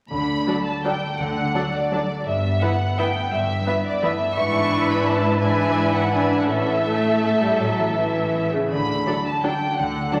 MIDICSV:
0, 0, Header, 1, 7, 480
1, 0, Start_track
1, 0, Key_signature, 2, "major"
1, 0, Tempo, 359066
1, 147, Time_signature, 3, 2, 24, 8
1, 3992, Tempo, 346420
1, 7832, Tempo, 370142
1, 11192, Tempo, 356295
1, 13686, End_track
2, 0, Start_track
2, 0, Title_t, "Violin section"
2, 0, Program_c, 0, 48
2, 139, Note_on_c, 0, 83, 62
2, 831, Note_off_c, 0, 83, 0
2, 882, Note_on_c, 0, 81, 47
2, 1115, Note_on_c, 0, 79, 49
2, 1131, Note_off_c, 0, 81, 0
2, 1579, Note_off_c, 0, 79, 0
2, 1583, Note_on_c, 0, 78, 57
2, 2317, Note_off_c, 0, 78, 0
2, 2337, Note_on_c, 0, 74, 53
2, 3031, Note_on_c, 0, 76, 60
2, 3046, Note_off_c, 0, 74, 0
2, 3492, Note_off_c, 0, 76, 0
2, 3499, Note_on_c, 0, 78, 58
2, 3988, Note_off_c, 0, 78, 0
2, 3994, Note_on_c, 0, 79, 55
2, 4456, Note_on_c, 0, 76, 65
2, 4467, Note_off_c, 0, 79, 0
2, 5190, Note_off_c, 0, 76, 0
2, 5194, Note_on_c, 0, 74, 58
2, 5431, Note_off_c, 0, 74, 0
2, 5456, Note_on_c, 0, 76, 63
2, 5906, Note_on_c, 0, 85, 80
2, 5907, Note_off_c, 0, 76, 0
2, 6635, Note_off_c, 0, 85, 0
2, 6642, Note_on_c, 0, 83, 62
2, 6865, Note_on_c, 0, 81, 62
2, 6884, Note_off_c, 0, 83, 0
2, 7335, Note_on_c, 0, 80, 66
2, 7344, Note_off_c, 0, 81, 0
2, 8050, Note_off_c, 0, 80, 0
2, 8063, Note_on_c, 0, 78, 55
2, 8306, Note_off_c, 0, 78, 0
2, 8308, Note_on_c, 0, 80, 55
2, 8655, Note_off_c, 0, 80, 0
2, 8655, Note_on_c, 0, 78, 47
2, 8700, Note_off_c, 0, 78, 0
2, 8759, Note_on_c, 0, 76, 63
2, 11380, Note_off_c, 0, 76, 0
2, 11680, Note_on_c, 0, 83, 64
2, 12368, Note_off_c, 0, 83, 0
2, 12439, Note_on_c, 0, 81, 50
2, 12670, Note_on_c, 0, 79, 53
2, 12673, Note_off_c, 0, 81, 0
2, 13116, Note_on_c, 0, 78, 56
2, 13126, Note_off_c, 0, 79, 0
2, 13686, Note_off_c, 0, 78, 0
2, 13686, End_track
3, 0, Start_track
3, 0, Title_t, "Violin section"
3, 0, Program_c, 1, 48
3, 637, Note_on_c, 1, 74, 33
3, 639, Note_on_c, 1, 69, 34
3, 744, Note_off_c, 1, 74, 0
3, 746, Note_off_c, 1, 69, 0
3, 1132, Note_on_c, 1, 69, 32
3, 1137, Note_on_c, 1, 74, 34
3, 1239, Note_off_c, 1, 69, 0
3, 1243, Note_off_c, 1, 74, 0
3, 2071, Note_on_c, 1, 69, 33
3, 2076, Note_on_c, 1, 74, 34
3, 2178, Note_off_c, 1, 69, 0
3, 2183, Note_off_c, 1, 74, 0
3, 2575, Note_on_c, 1, 69, 33
3, 2577, Note_on_c, 1, 74, 34
3, 2682, Note_off_c, 1, 69, 0
3, 2684, Note_off_c, 1, 74, 0
3, 3499, Note_on_c, 1, 76, 34
3, 3501, Note_on_c, 1, 71, 34
3, 3606, Note_off_c, 1, 76, 0
3, 3607, Note_off_c, 1, 71, 0
3, 3985, Note_on_c, 1, 71, 35
3, 3988, Note_on_c, 1, 76, 38
3, 4096, Note_off_c, 1, 71, 0
3, 4099, Note_off_c, 1, 76, 0
3, 4953, Note_on_c, 1, 76, 41
3, 4954, Note_on_c, 1, 71, 38
3, 5064, Note_off_c, 1, 71, 0
3, 5064, Note_off_c, 1, 76, 0
3, 5444, Note_on_c, 1, 71, 39
3, 5447, Note_on_c, 1, 76, 39
3, 5555, Note_off_c, 1, 71, 0
3, 5557, Note_off_c, 1, 76, 0
3, 5906, Note_on_c, 1, 76, 49
3, 5908, Note_on_c, 1, 71, 46
3, 7300, Note_off_c, 1, 71, 0
3, 7300, Note_off_c, 1, 76, 0
3, 7351, Note_on_c, 1, 71, 44
3, 7356, Note_on_c, 1, 76, 45
3, 8292, Note_off_c, 1, 71, 0
3, 8294, Note_off_c, 1, 76, 0
3, 8311, Note_on_c, 1, 71, 41
3, 8311, Note_on_c, 1, 76, 39
3, 8747, Note_off_c, 1, 76, 0
3, 8759, Note_off_c, 1, 71, 0
3, 8762, Note_on_c, 1, 76, 42
3, 8766, Note_on_c, 1, 69, 41
3, 11382, Note_off_c, 1, 76, 0
3, 11438, Note_off_c, 1, 69, 0
3, 12168, Note_on_c, 1, 69, 33
3, 12170, Note_on_c, 1, 74, 34
3, 12276, Note_off_c, 1, 69, 0
3, 12278, Note_off_c, 1, 74, 0
3, 12661, Note_on_c, 1, 74, 35
3, 12663, Note_on_c, 1, 69, 34
3, 12769, Note_off_c, 1, 74, 0
3, 12771, Note_off_c, 1, 69, 0
3, 13582, Note_on_c, 1, 69, 36
3, 13585, Note_on_c, 1, 74, 34
3, 13686, Note_off_c, 1, 69, 0
3, 13686, Note_off_c, 1, 74, 0
3, 13686, End_track
4, 0, Start_track
4, 0, Title_t, "Harp"
4, 0, Program_c, 2, 46
4, 141, Note_on_c, 2, 50, 39
4, 376, Note_on_c, 2, 57, 30
4, 629, Note_on_c, 2, 66, 28
4, 867, Note_off_c, 2, 57, 0
4, 883, Note_on_c, 2, 57, 30
4, 1127, Note_on_c, 2, 55, 27
4, 1346, Note_off_c, 2, 57, 0
4, 1362, Note_on_c, 2, 57, 31
4, 1527, Note_off_c, 2, 55, 0
4, 1575, Note_off_c, 2, 50, 0
4, 1591, Note_on_c, 2, 50, 37
4, 1822, Note_on_c, 2, 62, 31
4, 2045, Note_off_c, 2, 66, 0
4, 2061, Note_on_c, 2, 66, 32
4, 2307, Note_off_c, 2, 57, 0
4, 2323, Note_on_c, 2, 57, 31
4, 2573, Note_on_c, 2, 55, 28
4, 2799, Note_off_c, 2, 57, 0
4, 2815, Note_on_c, 2, 57, 33
4, 2973, Note_off_c, 2, 55, 0
4, 3038, Note_on_c, 2, 43, 44
4, 3051, Note_off_c, 2, 66, 0
4, 3054, Note_off_c, 2, 50, 0
4, 3054, Note_off_c, 2, 62, 0
4, 3059, Note_off_c, 2, 57, 0
4, 3266, Note_on_c, 2, 59, 34
4, 3504, Note_on_c, 2, 64, 34
4, 3731, Note_off_c, 2, 59, 0
4, 3747, Note_on_c, 2, 59, 34
4, 3988, Note_on_c, 2, 57, 28
4, 4217, Note_off_c, 2, 59, 0
4, 4234, Note_on_c, 2, 59, 36
4, 4395, Note_off_c, 2, 57, 0
4, 4452, Note_off_c, 2, 43, 0
4, 4468, Note_on_c, 2, 43, 44
4, 4698, Note_on_c, 2, 55, 35
4, 4932, Note_off_c, 2, 64, 0
4, 4948, Note_on_c, 2, 64, 36
4, 5176, Note_off_c, 2, 59, 0
4, 5193, Note_on_c, 2, 59, 37
4, 5431, Note_on_c, 2, 57, 34
4, 5650, Note_off_c, 2, 59, 0
4, 5667, Note_on_c, 2, 59, 38
4, 5827, Note_off_c, 2, 57, 0
4, 5899, Note_on_c, 2, 44, 48
4, 5913, Note_off_c, 2, 55, 0
4, 5916, Note_off_c, 2, 43, 0
4, 6121, Note_on_c, 2, 62, 36
4, 6355, Note_off_c, 2, 64, 0
4, 6372, Note_on_c, 2, 64, 39
4, 6612, Note_off_c, 2, 62, 0
4, 6629, Note_on_c, 2, 62, 37
4, 6877, Note_on_c, 2, 61, 33
4, 7098, Note_off_c, 2, 62, 0
4, 7115, Note_on_c, 2, 62, 39
4, 7282, Note_off_c, 2, 61, 0
4, 7328, Note_off_c, 2, 44, 0
4, 7344, Note_on_c, 2, 44, 45
4, 7575, Note_on_c, 2, 56, 36
4, 7809, Note_off_c, 2, 64, 0
4, 7826, Note_on_c, 2, 64, 36
4, 8055, Note_off_c, 2, 62, 0
4, 8071, Note_on_c, 2, 62, 33
4, 8311, Note_on_c, 2, 61, 30
4, 8525, Note_off_c, 2, 62, 0
4, 8540, Note_on_c, 2, 62, 33
4, 8701, Note_off_c, 2, 61, 0
4, 8762, Note_on_c, 2, 45, 40
4, 8782, Note_off_c, 2, 56, 0
4, 8783, Note_off_c, 2, 44, 0
4, 8784, Note_off_c, 2, 59, 0
4, 8785, Note_off_c, 2, 62, 0
4, 8996, Note_on_c, 2, 61, 30
4, 9232, Note_off_c, 2, 64, 0
4, 9247, Note_on_c, 2, 64, 32
4, 9484, Note_off_c, 2, 61, 0
4, 9500, Note_on_c, 2, 61, 32
4, 9744, Note_on_c, 2, 59, 26
4, 9970, Note_off_c, 2, 61, 0
4, 9986, Note_on_c, 2, 61, 33
4, 10147, Note_off_c, 2, 59, 0
4, 10195, Note_off_c, 2, 45, 0
4, 10210, Note_on_c, 2, 45, 40
4, 10448, Note_on_c, 2, 52, 30
4, 10681, Note_off_c, 2, 64, 0
4, 10697, Note_on_c, 2, 64, 32
4, 10927, Note_off_c, 2, 61, 0
4, 10943, Note_on_c, 2, 61, 29
4, 11192, Note_on_c, 2, 59, 28
4, 11424, Note_off_c, 2, 61, 0
4, 11440, Note_on_c, 2, 61, 33
4, 11606, Note_off_c, 2, 59, 0
4, 11682, Note_on_c, 2, 50, 41
4, 11691, Note_off_c, 2, 45, 0
4, 11695, Note_off_c, 2, 52, 0
4, 11695, Note_off_c, 2, 61, 0
4, 11696, Note_off_c, 2, 64, 0
4, 11919, Note_on_c, 2, 62, 30
4, 12162, Note_on_c, 2, 66, 33
4, 12406, Note_off_c, 2, 62, 0
4, 12422, Note_on_c, 2, 62, 31
4, 12674, Note_on_c, 2, 61, 26
4, 12885, Note_off_c, 2, 62, 0
4, 12901, Note_on_c, 2, 62, 30
4, 13062, Note_off_c, 2, 61, 0
4, 13110, Note_off_c, 2, 50, 0
4, 13126, Note_on_c, 2, 50, 39
4, 13353, Note_on_c, 2, 57, 33
4, 13574, Note_off_c, 2, 66, 0
4, 13590, Note_on_c, 2, 66, 32
4, 13686, Note_off_c, 2, 50, 0
4, 13686, Note_off_c, 2, 57, 0
4, 13686, Note_off_c, 2, 62, 0
4, 13686, Note_off_c, 2, 66, 0
4, 13686, End_track
5, 0, Start_track
5, 0, Title_t, "Viola section"
5, 0, Program_c, 3, 48
5, 621, Note_on_c, 3, 54, 32
5, 625, Note_on_c, 3, 62, 33
5, 728, Note_off_c, 3, 54, 0
5, 732, Note_off_c, 3, 62, 0
5, 1126, Note_on_c, 3, 62, 32
5, 1127, Note_on_c, 3, 54, 34
5, 1233, Note_off_c, 3, 62, 0
5, 1234, Note_off_c, 3, 54, 0
5, 2064, Note_on_c, 3, 54, 35
5, 2064, Note_on_c, 3, 62, 33
5, 2171, Note_off_c, 3, 54, 0
5, 2171, Note_off_c, 3, 62, 0
5, 2568, Note_on_c, 3, 62, 35
5, 2571, Note_on_c, 3, 54, 32
5, 2675, Note_off_c, 3, 62, 0
5, 2677, Note_off_c, 3, 54, 0
5, 3494, Note_on_c, 3, 59, 35
5, 3496, Note_on_c, 3, 52, 37
5, 3601, Note_off_c, 3, 59, 0
5, 3603, Note_off_c, 3, 52, 0
5, 3991, Note_on_c, 3, 59, 37
5, 3993, Note_on_c, 3, 52, 36
5, 4102, Note_off_c, 3, 59, 0
5, 4104, Note_off_c, 3, 52, 0
5, 4943, Note_on_c, 3, 52, 40
5, 4943, Note_on_c, 3, 59, 39
5, 5054, Note_off_c, 3, 52, 0
5, 5054, Note_off_c, 3, 59, 0
5, 5426, Note_on_c, 3, 59, 42
5, 5429, Note_on_c, 3, 52, 42
5, 5537, Note_off_c, 3, 59, 0
5, 5540, Note_off_c, 3, 52, 0
5, 5896, Note_on_c, 3, 62, 51
5, 5897, Note_on_c, 3, 52, 52
5, 7295, Note_off_c, 3, 52, 0
5, 7295, Note_off_c, 3, 62, 0
5, 7353, Note_on_c, 3, 52, 48
5, 7356, Note_on_c, 3, 62, 46
5, 8286, Note_off_c, 3, 52, 0
5, 8289, Note_off_c, 3, 62, 0
5, 8301, Note_on_c, 3, 52, 39
5, 8304, Note_on_c, 3, 62, 43
5, 8741, Note_off_c, 3, 52, 0
5, 8756, Note_off_c, 3, 62, 0
5, 8756, Note_on_c, 3, 52, 39
5, 8759, Note_on_c, 3, 61, 40
5, 9183, Note_off_c, 3, 52, 0
5, 9193, Note_off_c, 3, 61, 0
5, 9242, Note_on_c, 3, 57, 53
5, 9931, Note_off_c, 3, 57, 0
5, 9982, Note_on_c, 3, 55, 45
5, 10203, Note_on_c, 3, 54, 48
5, 10214, Note_off_c, 3, 55, 0
5, 10681, Note_on_c, 3, 52, 46
5, 10687, Note_off_c, 3, 54, 0
5, 11417, Note_off_c, 3, 52, 0
5, 11429, Note_on_c, 3, 49, 38
5, 11671, Note_off_c, 3, 49, 0
5, 12158, Note_on_c, 3, 62, 33
5, 12162, Note_on_c, 3, 54, 34
5, 12266, Note_off_c, 3, 62, 0
5, 12270, Note_off_c, 3, 54, 0
5, 12655, Note_on_c, 3, 54, 37
5, 12656, Note_on_c, 3, 62, 33
5, 12763, Note_off_c, 3, 54, 0
5, 12763, Note_off_c, 3, 62, 0
5, 13576, Note_on_c, 3, 54, 33
5, 13581, Note_on_c, 3, 62, 34
5, 13684, Note_off_c, 3, 54, 0
5, 13686, Note_off_c, 3, 62, 0
5, 13686, End_track
6, 0, Start_track
6, 0, Title_t, "Cello section"
6, 0, Program_c, 4, 48
6, 140, Note_on_c, 4, 50, 41
6, 546, Note_off_c, 4, 50, 0
6, 1590, Note_on_c, 4, 50, 40
6, 1985, Note_off_c, 4, 50, 0
6, 3036, Note_on_c, 4, 43, 44
6, 3422, Note_off_c, 4, 43, 0
6, 4460, Note_on_c, 4, 43, 48
6, 4861, Note_off_c, 4, 43, 0
6, 5901, Note_on_c, 4, 44, 51
6, 8718, Note_off_c, 4, 44, 0
6, 8767, Note_on_c, 4, 45, 44
6, 11384, Note_off_c, 4, 45, 0
6, 11679, Note_on_c, 4, 50, 39
6, 12081, Note_off_c, 4, 50, 0
6, 13123, Note_on_c, 4, 50, 44
6, 13507, Note_off_c, 4, 50, 0
6, 13686, End_track
7, 0, Start_track
7, 0, Title_t, "Double bass section"
7, 0, Program_c, 5, 48
7, 136, Note_on_c, 5, 38, 40
7, 544, Note_off_c, 5, 38, 0
7, 1586, Note_on_c, 5, 38, 42
7, 1983, Note_off_c, 5, 38, 0
7, 3027, Note_on_c, 5, 31, 41
7, 3418, Note_off_c, 5, 31, 0
7, 4469, Note_on_c, 5, 31, 48
7, 4866, Note_off_c, 5, 31, 0
7, 5896, Note_on_c, 5, 32, 51
7, 8716, Note_off_c, 5, 32, 0
7, 8764, Note_on_c, 5, 33, 42
7, 11382, Note_off_c, 5, 33, 0
7, 11681, Note_on_c, 5, 38, 41
7, 12083, Note_off_c, 5, 38, 0
7, 13126, Note_on_c, 5, 38, 43
7, 13509, Note_off_c, 5, 38, 0
7, 13686, End_track
0, 0, End_of_file